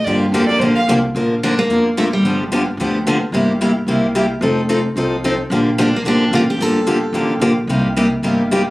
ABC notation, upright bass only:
X:1
M:4/4
L:1/8
Q:"Swing" 1/4=220
K:Gm
V:1 name="Upright bass" clef=bass
G,,2 F,,2 B,,, z C,,2 | [K:Bb] B,,,4 F,,4 | G,,,4 D,,4 | G,,,4 C,,4 |
F,,,4 C,,4 | B,,,4 B,,,2 A,,,2 | G,,,4 A,,,2 B,,,2 | C,,4 G,,,4 |]